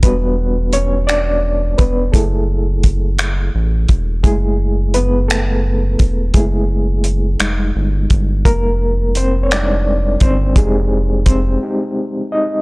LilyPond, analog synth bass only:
\new Staff \with { instrumentName = "Analog synth bass" } { \clef bass \time 6/8 \key fis \phrygian \tempo 4. = 57 e,,2~ e,,8 e,,8 | fis,,2 a,,8 e,,8 | fis,,2~ fis,,8 e,,8 | fis,,4. f,,8 g,,8 g,,8 |
f,,2~ f,,8 g,,8 | f,,4. r4. | }